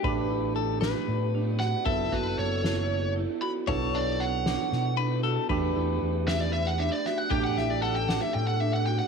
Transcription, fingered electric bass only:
X:1
M:7/8
L:1/8
Q:1/4=116
K:Amix
V:1 name="Fingered electric bass" clef=bass
A,,,4 A,,3 | F,,, F,,, F,,,4 z | B,,,4 B,,3 | E,, E,, E,,4 z |
A,,,4 A,,3 |]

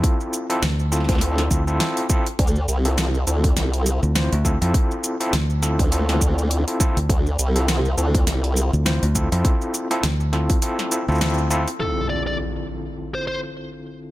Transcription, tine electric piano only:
X:1
M:4/4
L:1/16
Q:"Swing 16ths" 1/4=102
K:Dm
V:1 name="Tine electric piano"
[CEFA]3 [CEFA] z2 [CEFA]2 [CEFA]2 [CEFA] [CEFA] [CEFA]2 [CEFA] z | z3 [CEFA]2 z [CEFA]6 [CEFc] z [CEFA] [CEFA]- | [CEFA]3 [CEFA] z2 [CEFA]2 [CEFA]4- [CEFA] [CEFA] [CEFA] z | z3 [CEFA]2 z [CEFA]6 [CEFc] z [CEFA] [CEFA]- |
[CEFA]3 [CEFA] z2 [CEFA]2 [CEFA]2 [CEFA] [CEFA] [CEFA]2 [CEFA] z | [D,CEFA]16 |]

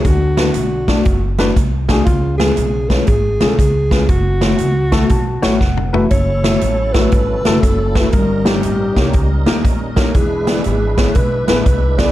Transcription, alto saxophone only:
X:1
M:4/4
L:1/16
Q:"Swing" 1/4=119
K:F#m
V:1 name="Alto saxophone"
F2 F8 z6 | ^E2 G4 B2 G3 A G4 | F12 z4 | c6 B6 A4 |
^A2 =G8 z4 A2 | G4 G4 B2 B4 d2 |]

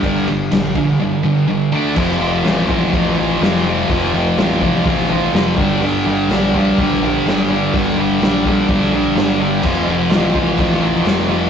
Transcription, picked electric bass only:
X:1
M:4/4
L:1/8
Q:1/4=125
K:Fmix
V:1 name="Picked electric bass" clef=bass
G,,,2 B,,,2 z4 | F,,, F,,, A,,,2 A,,,2 F,,,2 | F,,, F,,, A,,,2 A,,,2 F,,, G,,, | G,,, G,,, B,,,2 B,,,2 G,,,2 |
G,,, G,,, B,,,2 B,,,2 G,,,2 | F,,, F,,, A,,,2 A,,,2 F,,,2 |]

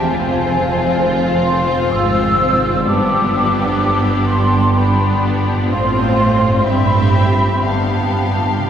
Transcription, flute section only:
X:1
M:3/4
L:1/8
Q:1/4=63
K:Gmix
V:1 name="Flute section"
_a3 c' e'2 | d'3 c' b z | c'2 b2 a2 |]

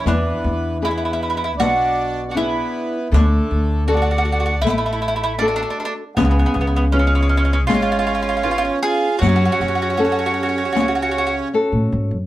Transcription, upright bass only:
X:1
M:4/4
L:1/16
Q:1/4=78
K:Emix
V:1 name="Upright bass" clef=bass
E,,2 E,,6 B,,,8 | D,,2 D,,6 A,,,8 | C,,2 C,,6 G,,,8 | F,,2 F,,6 C,,4- C,, A,, G,, F,, |]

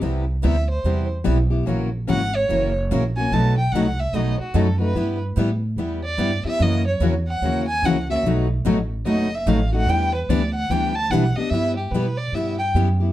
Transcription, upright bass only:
X:1
M:4/4
L:1/8
Q:"Swing" 1/4=146
K:Em
V:1 name="Upright bass" clef=bass
C,,2 D,,2 E,,2 B,,,2 | ^A,,,2 ^G,,,2 F,,,2 A,,,2 | B,,,2 C,,2 B,,, z F,,2 | G,,2 A,,2 E,,2 G,, z |
F,,2 E,,2 ^D,,2 ^C,,2 | B,,,2 A,,,2 F,,,2 A,,,2 | E,,2 D,,2 D,,2 B,,, z | [K:G] G,,2 B,,2 G,,2 F,,2 |]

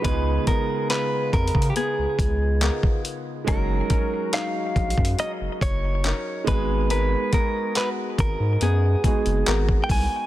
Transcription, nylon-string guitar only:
X:1
M:4/4
L:1/8
Q:1/4=70
K:F#
V:1 name="Nylon-string guitar"
C, B, E2 B,2 [B,EA]2 | [F,A] C D2 C2 [CDA] G, | [G,A] B, F2 B,2 [B,FA]2 |]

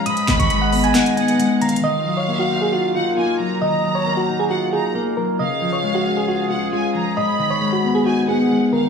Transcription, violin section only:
X:1
M:4/4
L:1/8
Q:1/4=135
K:Ebm
V:1 name="Violin section"
c'4 a g2 f | f4- f g a b | b4 g b z2 | f4- f g a b |
c'4 a g2 f |]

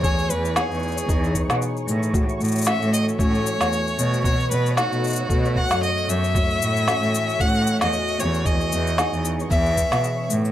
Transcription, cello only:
X:1
M:4/4
L:1/16
Q:"Swing 16ths" 1/4=114
K:Alyd
V:1 name="Cello" clef=bass
E,, z E,,3 E,,3 E,,3 B,, z2 A,,2- | A,, z A,,3 A,,3 A,,3 E,, z2 B,,2- | B,, z B,,3 B,,3 B,,3 F,, z2 F,, z | z2 A,,3 A,,3 A,,3 E,, z2 E,,2- |
E,, z E,,3 E,,3 E,,3 B,, z2 A,,2 |]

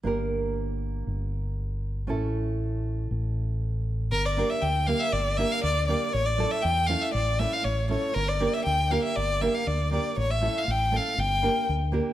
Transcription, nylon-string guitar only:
X:1
M:2/4
L:1/8
Q:1/4=119
K:none
V:1 name="Nylon-string guitar"
[_B,DG_B]4- | [_B,DG_B]4 | [A,^CEA]4- | [A,^CEA]4 |
z [_B,DG_B] z [B,DGB] | z [_B,DG_B] z [B,DGB] | z [A,^CEA] z [A,CEA] | z [A,^CEA] z [A,CEA] |
z [_B,DG_B] z [B,DGB] | z [_B,DG_B] z [B,DGB] | z [A,^CEA] z [A,CEA] | z [_B,DG_B] z [B,DGB] |]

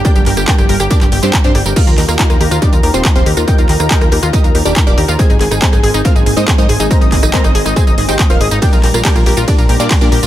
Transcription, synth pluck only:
X:1
M:4/4
L:1/16
Q:1/4=140
K:Eb
V:1 name="Synth pluck"
[GBdg] G G G [GBdg] G G G [DGBd] G G [CDGc] z [CDGc] G G | [FGBf] B B B [FGBf] B B B [DGBd] B B [CFGc] z [CFGc] B B | [GBeg] B B B [GBeg] B B B [EGBe] B B [DGBd] B [DGBd] B B | [Acea] A A A [Acea] A A A [FBcf] A A [EBce] A [EBce] A A |
[Bceb] e e e [Bceb] e e e [Acea] e e [Gceg] e [FBcf] e e | [GBdg] B B B [GBdg] B B B [DGBd] B B [DGBd] B [DGBd] B B |]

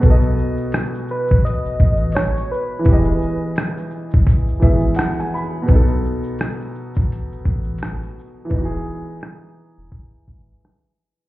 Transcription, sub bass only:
X:1
M:4/4
L:1/16
Q:"Swing 16ths" 1/4=85
K:E
V:1 name="Sub bass" clef=bass
B,,,2 z4 z A,,, z A,,, A,,,3 z3 | E,,,2 z4 z E,,, z G,,, G,,,2 z4 | B,,,2 z4 z A,,, z A,,, A,,,3 z3 | E,,,2 z4 z E,,, z G,,, G,,,2 z4 |]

